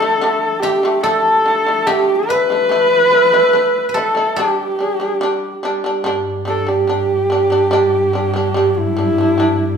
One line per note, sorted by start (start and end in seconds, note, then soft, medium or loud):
0.00 0.17 D3 medium
0.00 0.18 A3 loud
0.00 0.62 A4 loud
0.00 1.03 A4 medium
0.00 0.61 B4 medium
0.21 0.54 D3 medium
0.21 0.56 A3 loud
0.60 0.79 D3 medium
0.60 1.03 G4 medium
0.60 1.86 G4 medium
0.64 0.80 A3 medium
0.83 1.00 D3 medium
0.83 1.01 A3 medium
1.03 1.37 D3 medium
1.03 1.38 A3 loud
1.03 1.88 A4 medium
1.03 3.23 A4 medium
1.46 1.62 D3 medium
1.46 1.64 A3 medium
1.67 1.83 D3 medium
1.67 1.84 A3 medium
1.87 2.21 D3 loud
1.87 2.22 A3 loud
1.87 2.30 G4 loud
1.87 4.22 G4 medium
2.28 2.46 D3 medium
2.28 2.47 A3 medium
2.28 3.91 B4 loud
2.28 2.88 B4 medium
2.50 2.67 D3 medium
2.50 2.68 A3 medium
2.69 3.04 A3 medium
2.69 3.05 E4 medium
2.88 3.04 C5 medium
3.04 3.21 B4 medium
3.11 3.29 A3 medium
3.11 3.29 E4 medium
3.21 3.37 C5 medium
3.32 3.50 A3 medium
3.32 3.50 E4 medium
3.37 3.88 B4 medium
3.53 3.87 A3 medium
3.53 3.88 E4 medium
3.89 5.93 B4 soft
3.89 4.00 B4 medium
3.94 4.12 A3 medium
3.94 4.13 E4 medium
3.94 6.13 A4 medium
3.94 4.38 A4 medium
4.15 4.33 A3 medium
4.15 4.34 E4 medium
4.36 4.71 G3 medium
4.36 4.72 D4 loud
4.36 6.72 G4 medium
4.36 4.82 G4 medium
4.79 4.96 G3 medium
4.79 4.97 D4 medium
4.79 4.94 G#4 medium
4.94 5.06 G4 medium
5.00 5.17 G3 medium
5.00 5.18 D4 medium
5.06 5.18 G#4 medium
5.18 5.55 G3 loud
5.18 5.60 G4 medium
5.23 5.56 D4 loud
5.63 5.80 G3 medium
5.63 5.81 D4 loud
5.84 6.01 G3 medium
5.84 6.02 D4 medium
6.04 9.77 G2 medium
6.04 6.38 G3 loud
6.04 6.39 D4 loud
6.45 6.63 G3 medium
6.45 6.64 D4 medium
6.45 6.70 A4 medium
6.67 6.84 G3 medium
6.67 6.85 D4 medium
6.67 8.80 G4 medium
6.87 7.22 G3 medium
6.87 7.23 D4 medium
7.30 7.47 G3 medium
7.30 7.48 D4 medium
7.50 7.67 G3 medium
7.50 7.68 D4 medium
7.71 8.05 G3 loud
7.71 8.06 D4 loud
8.13 8.31 G3 medium
8.13 8.31 D4 medium
8.34 8.51 G3 medium
8.34 8.52 D4 medium
8.54 8.89 G3 medium
8.54 8.90 D4 medium
8.78 9.77 E4 loud
8.97 9.14 G3 medium
8.97 9.15 D4 medium
9.18 9.35 G3 medium
9.18 9.36 D4 medium
9.38 9.72 G3 medium
9.38 9.73 D4 medium